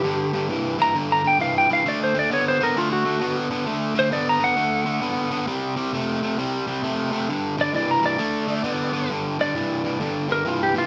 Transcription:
Already playing: G4
0.03 G2 D3
0.33 G2 D3
0.49 G2 E3
0.78 G2 E3 A#5
0.94 G2 D3
1.12 A#5
1.24 G2 D3 G5
1.40 G2 E3 F5
1.58 G5
1.69 G2 E3 F5
1.86 D3 A3 D5
2.04 C5
2.14 D3 A3
2.19 D5
2.31 D3 B3 C#5
2.48 C5
2.60 D3 B3 A#4
2.76 D3 A3 F4
2.93 F#4
3.05 D3 A3
3.21 D3 B3
3.50 D3 B3
3.66 D3 A3
3.95 D3 A3
3.99 C5
4.11 D3 B3 D5
4.29 A#5
4.39 D3 B3
4.44 F#5
4.56 D3 A3
4.85 D3 A3
5.01 D3 B3
5.31 D3 B3
5.47 C3 G3
5.76 C3 G3
5.93 C3 A3
6.22 C3 A3
6.38 C3 G3
6.67 C3 G3
6.83 C3 A3
7.12 C3 A3
7.29 G2 D3
7.58 G2 D3 D5
7.74 G2 E3 D5
7.91 A#5
8.03 G2 E3 D5
8.18 D3 A3
8.47 D3 A3
8.64 D3 B3
8.92 D3 B3
9.09 G2 D3
9.39 G2 D3 D5
9.55 G2 E3
9.84 G2 E3
10.00 G2 D3
10.28 G2 D3 A#4
10.45 G2 E3 F4
10.63 G4
10.74 G2 E3 F4

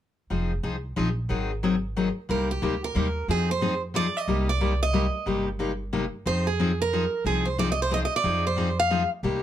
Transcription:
0.30 F1 F3 C4 D#4 G#4
0.63 C2 F3 C4 D#4 G#4
0.96 A#1 F3 C4 D#4 G#4
1.29 G#1 D#3 F#3 C4 D#4 G#4
1.63 D#3 F#3 C4 D#4 G#4
1.96 D#3 F#3 C4 D#4 G#4
2.29 C2 C3 G3 A#3 D#4 G4 A#4
2.51 G4
2.62 D2 C3 G3 A#3 D#4 G4
2.84 A#4
2.95 D#2 C3 G3 A#3 D#4 G4
3.28 F2 F3 C4 D#4 G#4
3.51 C5
3.61 F3 C4 D#4 G#4
3.94 F3 C4 D#4 G#4 D5
4.17 D#5
4.28 C2 C3 G3 A#3 D#4 G4
4.49 D5
4.61 C3 G3 A#3 D#4 G4
4.83 D#5
4.93 C3 G3 A#3 D#4 G4
5.26 G1 C3 G3 A#3 D#4 G4
5.59 C3 G3 A#3 D#4 G4
5.93 C3 G3 A#3 D#4 G4
6.26 F2 F3 C4 D#4 G#4 C5
6.47 G#4
6.59 F3 C4 D#4 G#4
6.82 A#4
6.93 F3 C4 D#4 G#4
7.25 C2 F3 C4 D#4 G#4
7.45 C5
7.58 F3 C4 D#4 G#4 D5
7.72 D#5
7.82 C5
7.91 F3 C4 D#4 G#4 D#5
8.05 D#5
8.16 D5
8.24 F2 F3 C4 D#4 G#4
8.47 C5
8.56 F3 C4 D#4 G#4
8.80 F5
8.90 F3 C4 D#4 G#4
9.23 C2 C3 G3 A#3 D#4 G4

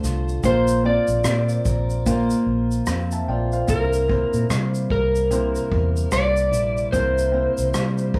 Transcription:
Already playing: D3 A3 C4 F4 A4 C5 D5
0.03 C2 F4, cross-stick, shaker
0.29 shaker
0.43 A#1 A#3 F4 C5, kick, shaker
0.68 shaker
0.84 A#3 C4 F4 C5 D5
1.08 A#1, shaker
1.24 A#2 C4, cross-stick, shaker
1.49 shaker
1.65 A#1 A#4, kick, shaker
1.90 shaker
2.06 A#3 F4 C5, kick, shaker
2.30 shaker
2.46 A#1
2.71 shaker
2.86 F2 C4 C5 F5, cross-stick, shaker
3.11 E5 A5, shaker
3.28 A#1 F4 D5 G5
3.52 C5 F5, shaker
3.67 C2 C3 A#3 E4 A#4 C5, kick, shaker
3.93 shaker
4.08 A#3 C4 E4 C5, kick
4.34 A#2, shaker
4.50 C3 G3, cross-stick, shaker
4.75 shaker
4.90 C2 A#4, kick
5.15 shaker
5.31 C3 A#3 E4 C5, shaker
5.55 shaker
5.71 E2, kick
5.97 shaker
6.11 C2 G3 D5, cross-stick, shaker
6.37 shaker
6.51 A#1 E4, shaker
6.77 shaker
6.92 C2 C3 A#3 E4 A#4 C5, kick, shaker
7.18 shaker
7.32 A#3 C4 E4 C5
7.58 C2, shaker
7.74 C3 G3, cross-stick, shaker
7.98 shaker
8.14 C2 A#4, kick

